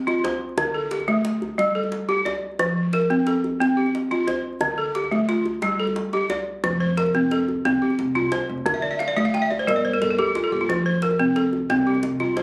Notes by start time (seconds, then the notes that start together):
Already playing: G4
0.07 F4, djembe tone
0.24 C5, djembe slap, djembe bass
0.33 djembe slap
0.49 djembe slap
0.58 D3, djembe slap, djembe tone, djembe bass
0.66 djembe slap
0.74 A4
0.91 G4, djembe slap
1.00 djembe slap, djembe bass
1.08 A3, djembe slap, djembe tone
1.25 djembe slap
1.33 djembe slap
1.42 djembe bass
1.58 G3, djembe slap, djembe tone
1.67 djembe slap
1.75 A4
1.83 djembe slap, djembe bass
1.92 djembe slap
2.09 G4, djembe tone
2.25 D5, djembe slap, djembe bass
2.35 djembe slap
2.52 djembe slap
2.59 F3, djembe slap, djembe tone, djembe bass
2.68 djembe slap
2.93 A#4, djembe slap
3.01 djembe slap, djembe bass
3.10 C4, djembe slap, djembe tone
3.27 A4, djembe slap
3.35 djembe slap
3.44 djembe bass
3.60 C4, djembe slap, djembe tone
3.69 djembe slap
3.77 G4
3.86 djembe slap, djembe bass
3.95 djembe slap
4.11 F4, djembe tone
4.27 C5, djembe slap, djembe bass
4.36 djembe slap
4.53 djembe slap
4.61 D3, djembe slap, djembe tone, djembe bass
4.70 djembe slap
4.78 A4
4.95 G4, djembe slap
5.04 djembe slap, djembe bass
5.11 A3, djembe slap, djembe tone
5.29 F4, djembe slap
5.45 djembe bass
5.62 G3, djembe slap, djembe tone
5.79 A4, djembe slap
5.87 djembe bass
5.96 djembe slap
6.04 djembe slap
6.13 G4, djembe tone
6.30 D5, djembe slap, djembe bass
6.64 F1 F3, djembe slap, djembe tone, djembe bass
6.72 djembe slap
6.80 C5
6.97 A#4, djembe slap
7.06 djembe slap, djembe bass
7.14 F1 C4, djembe slap, djembe tone
7.31 A4, djembe slap
7.40 djembe slap
7.48 djembe bass
7.65 C2 C4, djembe slap, djembe tone
7.74 djembe slap
7.82 G4
7.90 djembe slap, djembe bass
7.99 F1, djembe slap
8.15 C2 F4, djembe tone
8.32 C5, djembe slap, djembe bass
8.41 djembe slap
8.49 F1
8.58 djembe slap
8.66 D2 D3, djembe slap, djembe tone, djembe bass
8.74 E5, djembe slap
8.82 D5
8.91 E5
8.99 F5, djembe slap
9.08 D5, djembe slap
9.16 D2 A3 E5, djembe slap, djembe tone
9.25 F5
9.34 G5, djembe slap
9.42 E5, djembe slap
9.51 D5, djembe bass
9.59 C5
9.67 G1 G3 A#4, djembe slap, djembe tone
9.76 D5, djembe slap
9.85 C5
9.94 A#4, djembe slap, djembe bass
10.02 G1 A4, djembe slap
10.10 A#4
10.18 D2 G4 A4, djembe tone
10.27 G4
10.35 F4, djembe slap, djembe bass
10.44 A4, djembe slap
10.52 G1 G4
10.61 F4, djembe slap
10.68 F1 F3, djembe slap, djembe tone, djembe bass
10.77 djembe slap
10.86 C5
11.02 A#4, djembe slap
11.11 djembe slap, djembe bass
11.19 F1 C4, djembe slap, djembe tone
11.36 A4, djembe slap
11.45 djembe slap
11.53 djembe bass
11.70 C2 C4, djembe slap, djembe tone
11.78 djembe slap
11.87 G4
11.95 djembe slap, djembe bass
12.03 F1, djembe slap
12.20 C2 F4, djembe tone
12.37 C5, djembe slap, djembe bass